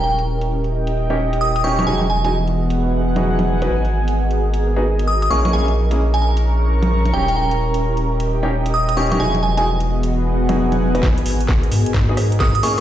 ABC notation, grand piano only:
X:1
M:4/4
L:1/16
Q:"Swing 16ths" 1/4=131
K:G#m
V:1 name="Grand piano"
z8 z [CDE=G] z4 [CDEG] [CDEG] | [DEFG] z2 [DEFG] z6 z [DEFG]4 [DEFB] | z8 z [B,DFG] z4 [A,CEG] [A,CEG] | [A,CEG] z2 [A,CEG] z8 z2 [CDE=G] z |
z8 z [CDE=G] z4 [CDEG] [CDEG] | [DEFG] z2 [DEFG] z6 z [DEFG]4 [DEFB] | z8 z [B,DFG] z4 [A,CEG] z |]